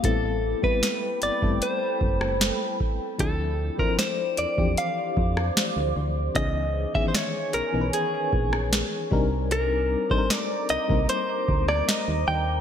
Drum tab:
HH |x---x-x-x---x---|x---x-x-x---x---|x---x-x-x---x---|x---x-x-x---x---|
SD |----o------ro---|----o------ro---|----o------ro---|----o------ro---|
BD |o--o---o--o---o-|o--o---o--o-----|o--o------o---o-|---o---o--o-----|